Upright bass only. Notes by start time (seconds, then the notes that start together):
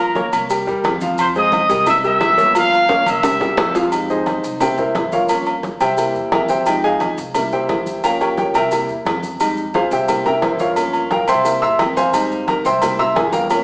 Already playing: G1
0.33 C2
0.67 E2
0.84 F2
1.69 C2
2.21 G1
3.06 C2
3.41 E2
3.58 F2
4.44 C2
4.95 G1
5.80 C2
6.15 E2
6.32 F2
7.18 C2
7.69 G1
8.54 C2
8.89 E2
9.06 F2
9.91 C2
10.43 G1
11.28 C2
11.62 E2
11.79 F2
12.65 C2
13.16 G1